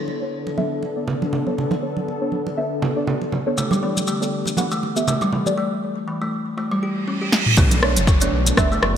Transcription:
0.00 3.54 D3 medium
0.00 5.54 B3 medium
0.00 3.54 D4 medium
0.00 5.54 A4 medium
0.08 muted conga soft
0.21 0.28 B3 medium
0.21 0.28 D4 medium
0.21 0.28 A4 medium
0.21 0.28 C#5 medium
0.47 muted conga soft
0.57 0.66 B3 medium
0.57 0.66 D4 medium
0.57 0.66 A4 medium
0.57 0.66 E5 loud
0.57 high conga medium
0.83 muted conga soft
0.97 1.43 B3 medium
0.97 1.43 D4 medium
0.97 1.43 A4 medium
0.97 1.43 D5 medium
1.08 low conga medium
1.22 muted conga soft
1.22 high conga medium
1.33 low conga medium
1.46 1.57 B3 medium
1.46 1.57 D4 medium
1.46 1.57 A4 medium
1.46 1.57 C#5 medium
1.46 high conga medium
1.58 low conga medium
1.71 muted conga soft
1.71 high conga loud
1.82 1.91 B3 medium
1.82 1.91 D4 medium
1.82 1.91 A4 medium
1.82 1.91 C#5 medium
1.97 high conga medium
2.08 muted conga soft
2.21 2.28 B3 medium
2.21 2.28 D4 medium
2.21 2.28 A4 medium
2.21 2.28 C#5 medium
2.32 high conga medium
2.47 muted conga soft
2.57 2.66 B3 medium
2.57 2.66 D4 medium
2.57 2.66 A4 medium
2.57 2.66 E5 loud
2.82 muted conga soft
2.82 low conga loud
2.96 3.43 B3 medium
2.96 3.43 D4 medium
2.96 3.43 A4 medium
2.96 3.43 D5 medium
3.07 low conga loud
3.22 muted conga soft
3.32 high conga medium
3.32 low conga medium
3.46 3.56 B3 medium
3.46 3.56 D4 medium
3.46 3.56 A4 medium
3.46 3.56 C#5 medium
3.57 5.56 D3 medium
3.57 3.65 A3 medium
3.57 5.56 G4 medium
3.57 low conga medium
3.57 maracas medium
3.71 3.81 G3 medium
3.71 muted conga soft
3.71 high conga medium
3.71 maracas soft
3.82 3.95 E3 medium
3.82 3.91 B3 medium
3.82 3.91 G4 medium
3.82 3.91 A4 medium
3.82 3.91 D5 medium
3.97 high conga medium
3.97 maracas medium
4.07 4.21 A3 medium
4.07 muted conga soft
4.07 maracas medium
4.21 4.28 B3 medium
4.21 4.28 G4 medium
4.21 4.28 A4 medium
4.21 4.28 D5 medium
4.21 maracas soft
4.46 muted conga soft
4.46 maracas medium
4.57 4.70 E3 medium
4.57 4.66 B3 medium
4.57 4.66 G4 medium
4.57 4.66 A4 medium
4.57 4.66 F#5 loud
4.57 high conga medium
4.57 maracas medium
4.71 4.78 A3 medium
4.71 maracas soft
4.83 muted conga soft
4.96 5.43 B3 medium
4.96 5.43 G4 medium
4.96 5.43 A4 medium
4.96 5.43 E5 medium
4.96 maracas medium
5.08 5.15 A3 medium
5.08 low conga medium
5.08 maracas medium
5.21 5.32 G3 medium
5.21 muted conga soft
5.21 high conga medium
5.21 maracas soft
5.33 5.45 E3 medium
5.33 low conga medium
5.46 5.57 B3 medium
5.46 5.57 G4 medium
5.46 5.57 A4 medium
5.46 5.57 D5 medium
5.46 high conga medium
5.46 maracas medium
5.58 5.71 A3 medium
6.08 6.20 E3 medium
6.22 6.28 A3 medium
6.57 6.65 A3 medium
6.57 reverse cymbal medium
6.71 6.82 G3 medium
6.83 6.90 G4 medium
7.08 7.15 C#4 medium
7.22 7.32 G4 medium
7.32 snare medium
7.46 mid tom medium
7.57 7.98 B1 loud
7.57 8.97 D3 medium
7.57 8.97 A3 medium
7.57 8.97 B3 medium
7.57 7.71 B3 loud
7.57 8.97 D4 medium
7.57 kick loud
7.57 downlifter medium
7.57 low conga loud
7.57 maracas medium
7.71 closed hi-hat soft
7.71 muted conga soft
7.71 high conga loud
7.71 maracas soft
7.82 7.91 A3 medium
7.82 7.91 D4 medium
7.82 7.91 C#5 medium
7.82 cross-stick medium
7.96 8.28 F#1 medium
7.96 closed hi-hat medium
7.96 high conga medium
7.96 maracas medium
8.07 8.20 F#3 medium
8.07 kick loud
8.07 muted conga soft
8.07 maracas medium
8.21 8.28 A3 medium
8.21 8.28 B3 loud
8.21 8.28 D4 medium
8.21 8.28 C#5 medium
8.21 closed hi-hat soft
8.21 maracas soft
8.32 8.52 B1 medium
8.46 closed hi-hat medium
8.46 muted conga soft
8.46 maracas medium
8.57 8.77 F#1 loud
8.57 8.66 A3 medium
8.57 8.65 B3 loud
8.57 8.66 D4 medium
8.57 8.66 E5 loud
8.57 kick loud
8.57 cross-stick medium
8.57 high conga medium
8.57 maracas medium
8.72 8.82 A3 loud
8.72 maracas soft
8.82 8.97 F#1 medium
8.82 8.95 F#3 medium
8.82 cross-stick medium
8.82 muted conga soft

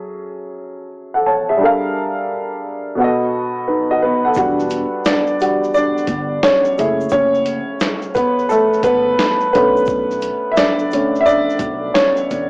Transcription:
0.00 1.55 F#3 medium
0.00 1.56 C#4 medium
0.00 0.88 G#4 medium
0.00 0.89 A4 medium
0.00 0.90 E5 medium
1.14 1.26 A4 soft
1.14 1.26 F#5 medium
1.27 1.47 C#5 medium
1.27 1.47 A5 medium
1.49 1.81 G#4 medium
1.49 1.81 E5 medium
1.57 2.94 G3 medium
1.57 2.95 D4 medium
1.61 2.96 A4 medium
1.61 2.97 A#4 medium
1.65 2.98 F5 medium
2.95 4.32 B2 medium
2.95 4.02 B3 medium
3.00 3.33 F#4 medium
3.00 3.34 A4 medium
3.04 3.35 D#5 medium
3.67 3.88 D#4 soft
3.67 3.88 B4 medium
3.91 4.23 F#4 medium
3.91 4.22 D#5 medium
4.02 5.02 B3 medium
4.02 5.08 B4 medium
4.25 4.57 A4 soft
4.25 4.57 F#5 medium
4.34 kick loud
4.34 shaker medium
4.37 4.83 E1 loud
4.37 5.39 G3 medium
4.37 5.06 D4 medium
4.37 5.40 F#4 medium
4.37 shaker medium
4.59 shaker soft
4.70 closed hi-hat medium
4.70 shaker soft
5.05 5.39 D4 medium
5.05 5.70 D5 medium
5.05 snare loud
5.05 shaker medium
5.27 shaker soft
5.39 5.71 G3 soft
5.39 5.71 D4 soft
5.39 5.72 F#4 medium
5.39 closed hi-hat medium
5.39 shaker soft
5.41 shaker soft
5.63 shaker soft
5.74 6.40 D4 medium
5.74 6.39 D5 medium
5.74 shaker medium
5.77 shaker medium
5.98 shaker soft
6.07 6.37 G1 medium
6.07 kick medium
6.07 closed hi-hat medium
6.07 shaker soft
6.43 7.09 C#4 medium
6.43 7.08 C#5 medium
6.43 snare loud
6.43 shaker medium
6.46 shaker medium
6.65 shaker medium
6.78 7.07 F#1 loud
6.78 8.50 A3 soft
6.78 9.51 E4 medium
6.78 9.50 G#4 medium
6.78 closed hi-hat medium
6.78 shaker soft
7.01 shaker soft
7.10 8.19 C#5 loud
7.10 kick loud
7.10 shaker medium
7.12 7.59 F#1 loud
7.12 8.12 C#4 medium
7.12 shaker medium
7.35 shaker soft
7.45 closed hi-hat medium
7.45 shaker soft
7.80 snare loud
7.80 shaker medium
8.02 shaker soft
8.15 8.51 B4 medium
8.15 kick loud
8.15 closed hi-hat medium
8.15 shaker soft
8.17 8.48 B3 medium
8.17 shaker soft
8.39 shaker soft
8.49 8.83 A3 medium
8.49 8.85 A4 medium
8.49 shaker medium
8.52 shaker medium
8.74 shaker soft
8.83 9.13 G#1 medium
8.83 9.50 B3 medium
8.83 9.52 B4 loud
8.83 kick medium
8.83 closed hi-hat medium
8.83 shaker soft
8.83 shaker medium
9.19 snare loud
9.19 shaker medium
9.21 shaker medium
9.41 shaker medium
9.53 10.29 B1 loud
9.53 10.53 D3 medium
9.53 10.53 A3 medium
9.53 10.48 B3 medium
9.53 10.54 C#4 medium
9.53 10.54 B4 medium
9.53 closed hi-hat medium
9.53 shaker medium
9.53 shaker soft
9.77 shaker soft
9.86 kick loud
9.86 shaker medium
9.89 shaker medium
10.11 shaker soft
10.21 closed hi-hat medium
10.21 shaker soft
10.51 10.57 E5 medium
10.56 11.17 D4 medium
10.56 11.22 D5 medium
10.56 snare loud
10.56 shaker medium
10.78 shaker soft
10.90 11.23 D3 soft
10.90 11.23 A3 soft
10.90 11.23 C#4 medium
10.90 closed hi-hat medium
10.90 shaker soft
10.93 shaker medium
11.15 shaker medium
11.20 11.26 E5 medium
11.25 11.92 D4 medium
11.25 11.97 D5 loud
11.25 shaker medium
11.28 shaker medium
11.50 shaker soft
11.59 11.88 B1 medium
11.59 kick medium
11.59 closed hi-hat medium
11.59 shaker soft
11.94 12.50 C#4 medium
11.94 12.50 C#5 medium
11.94 snare medium
11.94 shaker medium
11.97 shaker medium
12.16 shaker medium
12.30 12.50 E1 medium
12.30 closed hi-hat soft
12.30 shaker medium
12.30 shaker soft

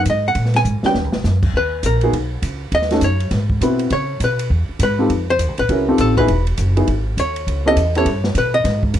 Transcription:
0.05 0.34 G#2 medium
0.05 kick soft
0.05 hi-hat pedal soft
0.05 ride medium
0.10 0.27 D#5 medium
0.28 0.56 F#5 medium
0.35 0.64 A#2 medium
0.35 kick soft
0.35 ride medium
0.45 snare soft
0.54 0.86 G#5 medium
0.54 snare soft
0.54 ride soft
0.65 0.82 G#2 medium
0.65 hi-hat pedal soft
0.83 0.94 G3 medium
0.83 0.94 B3 soft
0.83 0.94 C#4 medium
0.83 0.94 F#4 medium
0.83 1.23 G5 medium
0.83 muted upright bass stroke soft
0.83 snare soft
0.94 1.04 D#2 medium
0.94 snare medium
1.04 1.14 C#2 soft
1.12 1.23 B1 medium
1.12 snare medium
1.24 1.53 F#2 medium
1.24 snare medium
1.24 hi-hat pedal medium
1.43 kick medium
1.43 crash medium
1.54 1.82 D#2 medium
1.54 1.83 B4 medium
1.54 kick soft
1.83 2.12 A#1 medium
1.83 2.12 A#4 medium
1.83 kick soft
1.83 hi-hat pedal medium
1.83 ride medium
2.01 2.13 A#3 medium
2.01 2.13 B3 medium
2.01 2.13 D#4 medium
2.01 2.13 F#4 medium
2.01 2.13 G#4 medium
2.01 ride soft
2.13 2.42 B1 medium
2.13 kick soft
2.13 ride medium
2.42 2.71 C#2 medium
2.42 kick soft
2.42 hi-hat pedal medium
2.42 ride medium
2.72 3.01 D#2 medium
2.72 3.01 D#5 medium
2.72 kick soft
2.72 ride medium
2.82 snare soft
2.90 3.01 A3 medium
2.90 3.01 C#4 medium
2.90 3.01 D#4 medium
2.90 3.02 F#4 medium
2.90 3.02 A4 medium
2.90 snare soft
2.90 ride soft
3.01 3.30 F#2 medium
3.01 3.31 C#5 medium
3.01 kick soft
3.01 hi-hat pedal medium
3.01 ride medium
3.20 ride soft
3.31 3.60 G#2 medium
3.31 kick soft
3.31 snare soft
3.31 ride medium
3.50 kick medium
3.61 3.90 B2 medium
3.61 3.92 B3 medium
3.61 3.92 C4 medium
3.61 3.92 E4 medium
3.61 3.92 F#4 medium
3.61 3.92 B4 medium
3.61 kick soft
3.61 hi-hat pedal medium
3.61 ride medium
3.79 ride soft
3.90 4.19 C#3 medium
3.90 4.19 C#5 medium
3.90 kick soft
3.90 ride medium
4.20 4.49 B2 medium
4.20 4.50 B4 medium
4.20 kick soft
4.20 hi-hat pedal medium
4.20 ride medium
4.39 ride medium
4.50 4.67 E2 medium
4.50 kick soft
4.69 muted upright bass stroke soft
4.79 5.08 G#2 medium
4.79 5.26 B4 medium
4.79 kick soft
4.79 hi-hat pedal medium
4.79 ride medium
4.99 5.09 C4 medium
4.99 5.09 D#4 medium
4.99 5.09 F4 medium
4.99 5.09 G4 medium
4.99 5.09 A4 medium
5.09 5.38 F2 medium
5.09 kick soft
5.09 ride medium
5.30 5.57 C5 medium
5.39 5.48 D#2 medium
5.39 kick soft
5.39 hi-hat pedal medium
5.39 ride medium
5.48 5.58 C2 medium
5.58 5.68 A1 medium
5.58 5.96 B4 medium
5.58 ride soft
5.69 5.98 C2 medium
5.69 5.86 C#4 medium
5.69 5.86 E4 medium
5.69 5.86 F#4 medium
5.69 5.86 G#4 medium
5.69 5.86 A#4 medium
5.69 kick soft
5.69 ride medium
5.88 6.14 C4 medium
5.88 6.14 D#4 medium
5.88 6.14 F4 medium
5.88 6.14 G4 medium
5.88 6.14 A4 medium
5.98 6.27 A1 medium
5.98 6.17 A4 medium
5.98 kick soft
5.98 hi-hat pedal medium
5.98 ride medium
6.17 6.28 B3 medium
6.17 6.28 D#4 medium
6.17 6.28 E4 medium
6.17 6.28 F#4 medium
6.17 6.28 G#4 medium
6.17 6.45 B4 medium
6.17 kick soft
6.17 ride soft
6.28 6.57 E1 medium
6.28 kick soft
6.28 ride medium
6.47 ride soft
6.57 6.87 F#1 medium
6.57 kick soft
6.57 hi-hat pedal medium
6.57 ride medium
6.76 6.86 B3 medium
6.76 6.86 D#4 medium
6.76 6.86 E4 medium
6.76 6.87 F#4 medium
6.76 6.86 G#4 medium
6.76 ride soft
6.87 7.16 G#1 medium
6.87 kick soft
6.87 ride medium
7.17 7.46 D#2 medium
7.17 7.63 C#5 medium
7.17 kick soft
7.17 hi-hat pedal medium
7.17 ride medium
7.36 ride soft
7.47 7.76 C#2 medium
7.47 kick soft
7.47 ride medium
7.66 7.75 B3 medium
7.66 7.75 C#4 medium
7.66 7.76 E4 medium
7.66 7.76 G4 medium
7.66 7.76 A4 medium
7.66 7.94 D#5 loud
7.76 8.04 E2 medium
7.76 kick soft
7.76 hi-hat pedal medium
7.76 ride medium
7.95 8.05 B3 medium
7.95 8.05 C#4 medium
7.95 8.05 E4 medium
7.95 8.06 G4 medium
7.95 8.06 A4 medium
7.95 8.34 C#5 medium
7.95 ride soft
8.05 8.34 G2 medium
8.05 kick soft
8.05 ride medium
8.24 snare medium
8.35 8.64 B2 medium
8.35 8.55 B4 medium
8.35 kick soft
8.35 hi-hat pedal soft
8.35 ride medium
8.54 8.82 D#5 loud
8.64 8.93 G#2 medium
8.64 kick soft
8.64 snare soft
8.64 ride medium
8.83 kick medium
8.94 8.99 E2 medium
8.94 kick soft
8.94 hi-hat pedal medium
8.94 ride medium

